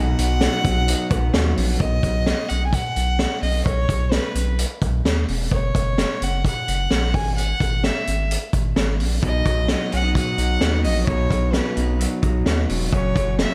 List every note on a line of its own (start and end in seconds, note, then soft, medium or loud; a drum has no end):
0.00 0.15 B1 loud
0.00 1.80 B2 medium
0.00 1.10 B3 medium
0.00 0.42 D#4 medium
0.00 1.55 F#5 loud
0.19 0.48 B1 loud
0.19 0.64 F#3 medium
0.19 closed hi-hat medium
0.41 0.88 D#4 medium
0.41 snare loud
0.41 closed hi-hat medium
0.65 0.94 B1 medium
0.65 1.33 F#3 medium
0.65 kick medium
0.65 closed hi-hat medium
0.88 2.35 D#4 medium
0.88 closed hi-hat loud
1.10 1.31 B1 loud
1.10 1.56 B3 medium
1.10 kick medium
1.10 closed hi-hat medium
1.33 1.54 D#2 medium
1.33 2.35 F#3 medium
1.33 snare loud
1.33 closed hi-hat medium
1.56 1.77 A#1 medium
1.56 2.35 B3 soft
1.56 open hi-hat medium
1.79 2.00 B1 loud
1.79 2.50 D#5 loud
1.79 kick medium
1.79 closed hi-hat medium
2.03 2.33 B1 medium
2.03 kick medium
2.03 closed hi-hat medium
2.26 snare loud
2.26 closed hi-hat medium
2.49 2.80 B1 medium
2.49 2.66 F#5 medium
2.49 closed hi-hat medium
2.66 2.76 G#5 medium
2.73 3.42 F#5 medium
2.73 kick medium
2.73 closed hi-hat medium
2.96 3.26 B1 loud
2.96 closed hi-hat medium
3.19 snare loud
3.19 closed hi-hat medium
3.42 3.62 B1 loud
3.42 3.64 D#5 medium
3.42 open hi-hat medium
3.65 3.86 B1 loud
3.65 4.13 C#5 medium
3.65 kick medium
3.65 closed hi-hat medium
3.89 4.19 B1 loud
3.89 kick medium
3.89 closed hi-hat medium
4.11 4.58 B4 medium
4.11 snare loud
4.11 closed hi-hat medium
4.35 4.65 B1 medium
4.35 closed hi-hat medium
4.59 closed hi-hat medium
4.81 5.02 B1 loud
4.81 kick medium
4.81 closed hi-hat medium
5.05 5.25 D#2 medium
5.05 snare loud
5.05 closed hi-hat medium
5.28 5.48 E1 medium
5.28 open hi-hat medium
5.51 5.71 F#1 loud
5.51 6.24 C#5 medium
5.51 kick medium
5.51 closed hi-hat medium
5.75 6.05 F#1 medium
5.75 kick medium
5.75 closed hi-hat medium
5.98 snare medium
5.98 closed hi-hat medium
6.21 6.51 F#1 medium
6.21 6.45 F#5 medium
6.21 closed hi-hat medium
6.45 7.16 F#5 medium
6.45 kick medium
6.45 closed hi-hat medium
6.68 6.88 F#1 loud
6.68 closed hi-hat medium
6.91 7.16 A#1 loud
6.91 snare medium
6.91 closed hi-hat medium
7.14 7.54 G#1 medium
7.14 7.35 G#5 medium
7.14 kick medium
7.14 open hi-hat medium
7.36 7.86 F#5 medium
7.36 closed hi-hat medium
7.60 7.90 G#1 loud
7.60 kick medium
7.60 closed hi-hat medium
7.84 8.30 E5 medium
7.84 snare loud
7.84 closed hi-hat medium
8.07 8.37 G#1 medium
8.07 closed hi-hat medium
8.31 closed hi-hat medium
8.53 8.73 G#1 medium
8.53 kick medium
8.53 closed hi-hat medium
8.76 9.02 G#1 loud
8.76 snare loud
8.76 closed hi-hat medium
9.00 9.20 A#1 loud
9.00 open hi-hat medium
9.22 9.42 B1 loud
9.22 11.06 B2 medium
9.22 9.92 D#4 medium
9.22 9.90 D#5 medium
9.22 kick medium
9.22 closed hi-hat medium
9.46 9.75 B1 medium
9.46 10.14 F#3 medium
9.46 kick loud
9.46 closed hi-hat medium
9.68 10.59 B3 soft
9.68 snare loud
9.68 closed hi-hat medium
9.92 10.22 B1 medium
9.92 10.03 C#4 medium
9.92 10.14 F#5 loud
9.92 closed hi-hat medium
10.03 10.37 D#4 medium
10.14 10.83 F#3 medium
10.14 10.82 F#5 medium
10.14 kick medium
10.14 closed hi-hat medium
10.38 10.58 B1 loud
10.38 11.07 D#4 medium
10.38 closed hi-hat medium
10.61 10.87 D#2 medium
10.61 11.52 B3 medium
10.61 snare loud
10.61 closed hi-hat medium
10.84 11.05 A#1 medium
10.84 11.30 F#3 medium
10.84 11.05 D#5 medium
10.84 open hi-hat medium
11.06 11.27 B1 loud
11.06 12.93 B2 medium
11.06 11.75 D#4 medium
11.06 11.55 C#5 medium
11.06 kick medium
11.06 closed hi-hat medium
11.30 11.60 B1 loud
11.30 11.99 F#3 medium
11.30 kick medium
11.30 closed hi-hat medium
11.53 12.44 B3 medium
11.53 12.00 B4 medium
11.53 snare loud
11.53 closed hi-hat medium
11.76 12.07 B1 medium
11.76 12.21 D#4 medium
11.76 closed hi-hat medium
11.99 12.69 F#3 medium
11.99 closed hi-hat medium
12.22 12.43 B1 loud
12.22 12.92 D#4 medium
12.22 kick medium
12.22 closed hi-hat medium
12.45 12.66 D#2 medium
12.45 12.97 B3 medium
12.45 snare medium
12.45 closed hi-hat medium
12.69 12.90 E1 medium
12.69 13.15 F#3 medium
12.69 open hi-hat medium
12.92 13.13 F#1 loud
12.92 13.54 F#2 medium
12.92 13.54 C#4 medium
12.92 13.36 C#5 medium
12.92 kick medium
12.92 closed hi-hat medium
13.15 13.45 F#1 medium
13.15 13.54 F#3 medium
13.15 kick medium
13.15 closed hi-hat medium
13.39 13.54 A#3 soft
13.39 13.54 E5 medium
13.39 snare loud
13.39 closed hi-hat medium